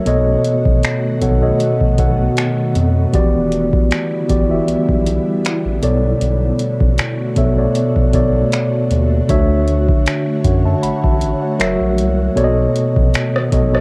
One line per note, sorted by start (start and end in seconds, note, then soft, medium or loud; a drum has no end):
0.00 3.10 F#4 medium
0.06 0.37 B1 loud
0.06 1.08 B2 loud
0.06 3.11 D#3 medium
0.06 3.11 A3 medium
0.06 1.09 B3 loud
0.06 9.25 B3 medium
0.06 1.09 A4 medium
0.06 1.09 C#5 medium
0.06 1.10 D#5 loud
0.06 closed hi-hat medium
0.45 closed hi-hat medium
0.65 0.79 A1 medium
0.65 kick medium
0.83 finger snap loud
0.83 closed hi-hat medium
1.20 1.52 B1 medium
1.20 1.40 B2 medium
1.20 1.40 B3 medium
1.20 1.40 A4 medium
1.20 1.40 C#5 medium
1.20 1.41 F#5 medium
1.20 kick medium
1.20 closed hi-hat medium
1.41 1.92 B2 medium
1.41 1.92 B3 medium
1.41 1.92 A4 medium
1.41 1.93 C#5 medium
1.41 1.93 D#5 medium
1.60 closed hi-hat medium
1.81 kick medium
1.97 2.29 B1 medium
1.97 3.01 B2 medium
1.97 3.01 B3 medium
1.97 3.01 A4 medium
1.97 3.01 C#5 medium
1.97 3.02 F#5 medium
1.97 kick medium
1.97 closed hi-hat medium
2.37 finger snap loud
2.37 closed hi-hat medium
2.75 3.06 F2 medium
2.75 closed hi-hat medium
3.13 3.75 E1 loud
3.13 5.80 D3 medium
3.13 4.16 E3 loud
3.13 5.80 G3 medium
3.13 4.16 B3 medium
3.13 5.80 E4 medium
3.13 4.17 F#4 medium
3.13 4.17 G4 loud
3.13 4.17 D5 loud
3.13 kick loud
3.13 closed hi-hat medium
3.52 closed hi-hat medium
3.73 kick medium
3.91 finger snap loud
3.91 closed hi-hat medium
4.28 4.60 G1 medium
4.28 4.47 E3 medium
4.28 4.48 B3 medium
4.28 4.48 F#4 medium
4.28 4.48 G4 medium
4.28 4.48 D5 medium
4.28 kick medium
4.28 closed hi-hat medium
4.49 5.83 E3 medium
4.49 5.81 B3 medium
4.49 5.83 F#4 medium
4.49 5.83 G4 medium
4.49 5.84 E5 medium
4.68 4.76 B1 soft
4.68 closed hi-hat medium
4.88 5.19 B1 medium
4.88 kick medium
5.06 closed hi-hat medium
5.45 finger snap loud
5.45 closed hi-hat medium
5.66 5.80 A1 medium
5.82 6.14 B1 loud
5.82 7.21 B2 medium
5.82 11.56 D3 medium
5.82 11.56 A3 medium
5.82 7.21 B3 medium
5.82 13.80 F#4 medium
5.82 7.21 A4 medium
5.82 7.21 C#5 medium
5.82 7.22 D5 medium
5.82 closed hi-hat medium
6.21 6.52 B1 loud
6.21 closed hi-hat medium
6.59 closed hi-hat medium
6.81 6.95 A1 medium
6.81 kick medium
6.98 finger snap loud
6.98 closed hi-hat medium
7.36 7.67 B1 medium
7.36 7.55 B2 medium
7.36 7.55 B3 medium
7.36 7.55 A4 medium
7.36 7.56 C#5 medium
7.36 7.56 E5 medium
7.36 kick medium
7.36 closed hi-hat medium
7.57 8.08 B2 medium
7.57 8.08 B3 medium
7.57 8.08 A4 medium
7.57 8.08 C#5 medium
7.57 8.08 D5 medium
7.75 closed hi-hat medium
7.96 kick medium
8.13 8.44 B1 medium
8.13 9.16 B2 medium
8.13 9.16 B3 medium
8.13 9.17 A4 medium
8.13 9.17 C#5 medium
8.13 9.17 D5 medium
8.13 kick medium
8.13 closed hi-hat medium
8.52 finger snap loud
8.52 closed hi-hat medium
8.91 9.21 D#2 medium
8.91 closed hi-hat medium
9.28 9.90 D2 loud
9.28 10.31 D3 loud
9.28 10.32 D4 loud
9.28 10.32 F#4 loud
9.28 10.32 C#5 medium
9.28 12.34 C#5 medium
9.28 10.32 E5 loud
9.28 kick loud
9.28 closed hi-hat medium
9.68 closed hi-hat medium
9.89 kick loud
10.06 finger snap loud
10.06 closed hi-hat medium
10.44 10.75 F#2 medium
10.44 10.65 C#5 medium
10.44 10.64 F#5 medium
10.44 kick medium
10.44 closed hi-hat medium
10.66 10.83 E5 medium
10.66 10.82 A5 medium
10.83 10.92 A1 soft
10.83 11.03 F#5 medium
10.83 11.03 B5 medium
10.83 closed hi-hat medium
11.03 11.34 A1 medium
11.03 11.41 E5 medium
11.03 11.40 A5 medium
11.03 kick medium
11.21 closed hi-hat medium
11.42 11.59 C#5 medium
11.42 11.79 F#5 medium
11.59 11.77 F#1 loud
11.59 12.28 F#3 medium
11.59 12.29 F#4 medium
11.59 12.29 A#4 medium
11.59 12.29 C#5 medium
11.59 12.30 E5 loud
11.59 finger snap loud
11.59 closed hi-hat medium
11.81 12.00 A#1 medium
11.98 12.29 C2 loud
11.98 closed hi-hat medium
12.35 12.67 B1 loud
12.35 13.39 B2 loud
12.35 13.80 D#3 medium
12.35 13.80 A3 medium
12.35 13.39 B3 loud
12.35 13.80 B3 medium
12.35 13.39 A4 medium
12.35 13.40 C#5 loud
12.35 12.44 D5 loud
12.35 closed hi-hat medium
12.44 13.43 D#5 loud
12.75 closed hi-hat medium
12.96 13.10 A1 medium
12.96 kick loud
13.14 finger snap loud
13.14 closed hi-hat medium
13.36 cross-stick medium
13.51 13.80 B1 medium
13.51 13.70 B2 medium
13.51 13.71 B3 medium
13.51 13.71 A4 medium
13.51 13.71 C#5 medium
13.51 13.71 D#5 medium
13.51 kick medium
13.51 closed hi-hat medium
13.72 13.80 B2 medium
13.72 13.80 B3 medium
13.72 13.80 A4 medium
13.72 13.80 C#5 medium
13.72 13.80 D#5 medium
13.72 cross-stick medium